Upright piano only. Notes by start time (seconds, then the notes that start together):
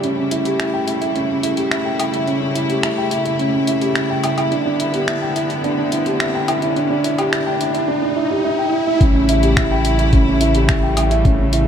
0.03 C#4
0.17 C#4
0.31 E4
0.45 G4
0.60 E4
0.73 G5
0.87 E4
1.01 E4
1.15 C#4
1.29 C#4
1.43 E4
1.57 G4
1.71 E4
1.85 G5
1.99 E4
2.13 E4
2.27 C#4
2.41 C#4
2.55 E4
2.69 G4
2.83 E4
2.98 G5
3.11 E4
3.25 E4
3.39 C#4
3.54 C#4
3.68 E4
3.82 G4
3.96 E4
4.10 G5
4.24 E4
4.38 E4
4.52 D4
4.65 D4
4.79 E4
4.94 G4
5.08 E4
5.21 G5
5.36 E4
5.50 E4
5.64 D4
5.78 D4
5.92 E4
6.06 G4
6.21 E4
6.34 G5
6.48 E4
6.62 E4
6.76 D4
6.90 D4
7.04 E4
7.18 G4
7.32 E4
7.46 G5
7.60 E4
7.74 E4
7.88 D4
8.02 D4
8.16 E4
8.31 G4
8.44 E4
8.58 G5
8.73 E4
8.87 E4
9.01 C#4
9.15 C#4
9.29 E4
9.43 G4
9.57 E4
9.71 G5
9.85 E4
9.99 E4
10.13 C#4
10.27 C#4
10.41 E4
10.55 G4
10.69 E4
10.83 G5
10.97 E4
11.11 E4
11.24 C#4
11.39 C#4
11.53 E4